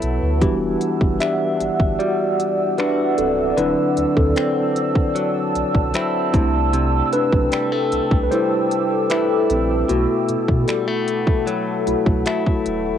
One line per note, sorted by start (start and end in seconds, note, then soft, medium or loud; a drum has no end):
0.00 0.19 B1 medium
0.00 0.41 B2 medium
0.00 1.99 F#3 medium
0.00 0.43 A3 soft
0.00 0.50 A3 medium
0.00 0.43 E4 soft
0.00 1.23 E4 medium
0.00 0.43 F#4 medium
0.00 0.39 B4 medium
0.00 6.30 F#5 medium
0.00 0.38 A5 medium
0.00 12.98 E6 medium
0.00 closed hi-hat medium
0.22 0.43 D2 medium
0.41 0.76 E1 loud
0.41 3.57 E3 medium
0.41 0.94 G3 medium
0.41 1.18 B3 medium
0.41 0.95 D4 medium
0.41 0.95 F#4 medium
0.41 1.17 G4 medium
0.41 6.30 D5 medium
0.41 3.54 E5 medium
0.41 kick medium
0.41 closed hi-hat medium
0.81 closed hi-hat medium
1.01 1.18 F#1 loud
1.01 kick medium
1.20 2.79 D4 medium
1.20 1.96 G4 medium
1.20 2.02 E5 loud
1.20 finger snap loud
1.20 closed hi-hat medium
1.60 1.68 G1 soft
1.60 closed hi-hat medium
1.80 1.97 G1 medium
1.80 kick medium
1.99 2.77 G3 medium
1.99 2.75 F#4 medium
1.99 2.81 D5 loud
1.99 closed hi-hat medium
2.40 closed hi-hat medium
2.78 3.65 G3 medium
2.78 4.36 D4 medium
2.78 3.16 D4 medium
2.78 4.39 F#4 medium
2.78 3.19 B4 medium
2.78 finger snap loud
2.78 closed hi-hat medium
3.18 3.52 C#1 medium
3.18 3.37 C4 medium
3.18 3.36 A4 medium
3.18 closed hi-hat medium
3.57 3.75 D1 loud
3.57 6.33 D3 medium
3.57 6.30 F#3 medium
3.57 4.17 C4 medium
3.57 4.14 D4 medium
3.57 6.31 E4 medium
3.57 4.18 B4 loud
3.57 7.88 A5 medium
3.57 closed hi-hat medium
3.97 4.05 D2 medium
3.97 closed hi-hat medium
4.16 4.34 D2 loud
4.16 6.31 C4 medium
4.16 6.30 A4 medium
4.16 kick medium
4.36 5.95 C4 medium
4.36 finger snap loud
4.36 closed hi-hat medium
4.76 closed hi-hat medium
4.95 kick medium
5.15 5.93 F#3 medium
5.15 closed hi-hat medium
5.55 5.63 B1 soft
5.55 closed hi-hat medium
5.75 5.92 B1 medium
5.75 kick medium
5.94 6.42 F#3 medium
5.94 7.52 C4 medium
5.94 9.11 E4 medium
5.94 finger snap loud
5.94 closed hi-hat medium
6.33 7.02 C2 loud
6.33 6.72 C3 medium
6.33 6.86 A3 medium
6.33 6.87 D4 soft
6.33 6.87 E4 medium
6.33 9.85 A4 medium
6.33 9.85 G5 medium
6.33 kick loud
6.33 closed hi-hat medium
6.73 9.89 C3 medium
6.73 closed hi-hat medium
7.13 8.21 D4 medium
7.13 8.22 B4 loud
7.13 closed hi-hat medium
7.33 7.50 B1 medium
7.33 kick medium
7.52 7.72 G3 medium
7.52 finger snap loud
7.52 closed hi-hat medium
7.72 9.10 A3 soft
7.92 8.00 C2 soft
7.92 9.87 D6 medium
7.92 closed hi-hat medium
8.11 8.28 C2 medium
8.11 kick loud
8.23 8.31 B4 medium
8.31 9.09 G3 medium
8.31 9.07 E4 medium
8.31 9.12 C5 loud
8.31 closed hi-hat medium
8.71 closed hi-hat medium
9.10 9.97 G3 medium
9.10 10.68 A3 medium
9.10 11.50 E4 medium
9.10 9.48 E4 medium
9.10 9.51 B4 medium
9.10 finger snap loud
9.10 closed hi-hat medium
9.49 9.84 A#1 medium
9.49 9.87 C4 medium
9.49 9.90 A4 medium
9.49 closed hi-hat medium
9.88 10.06 B1 loud
9.88 12.98 B2 medium
9.88 11.44 A3 medium
9.88 11.86 E4 soft
9.88 9.90 F#4 medium
9.88 11.87 F#4 medium
9.88 12.98 A4 medium
9.88 12.98 F#5 medium
9.88 12.98 B5 medium
9.88 closed hi-hat medium
10.29 10.37 B2 soft
10.29 closed hi-hat medium
10.48 10.66 B2 loud
10.48 kick medium
10.68 10.88 G3 medium
10.68 finger snap loud
10.68 closed hi-hat medium
10.88 12.25 A3 soft
11.08 closed hi-hat medium
11.27 kick loud
11.47 12.26 F#3 medium
11.47 closed hi-hat medium
11.87 11.95 B1 soft
11.87 12.22 A3 soft
11.87 12.23 E4 soft
11.87 12.23 F#4 medium
11.87 closed hi-hat medium
12.06 12.23 B1 medium
12.06 kick medium
12.26 12.98 F#3 medium
12.26 12.98 A3 medium
12.26 12.98 E4 medium
12.26 finger snap loud
12.26 closed hi-hat medium
12.46 kick medium
12.66 12.98 D#1 medium
12.66 closed hi-hat medium